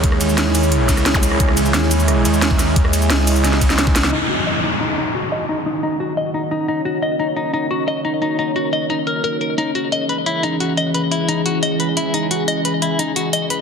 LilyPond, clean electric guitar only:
\new Staff \with { instrumentName = "Clean electric guitar" } { \time 4/4 \key ees \phrygian \tempo 4 = 176 r1 | r1 | r1 | ees'8 ges'8 ees''8 ees'8 ees'8 ees'8 ges'8 ees''8 |
ees'8 ees'8 ees'8 ges'8 ees''8 ees'8 ees'8 ees'8 | ges'8 ees''8 ees'8 ees'8 ees'8 ges'8 ees''8 ees'8 | ees'8 ees'8 ges'8 ees''8 ees'8 bes'8 bes'8 bes'8 | ees'8 ges'8 ees''8 ces''8 fes'8 ees'8 ges'8 ees''8 |
ces''8 fes'8 ees'8 ges'8 ees''8 ces''8 fes'8 ees'8 | ges'8 ees''8 ces''8 fes'8 ees'8 ges'8 ees''8 ces''8 | }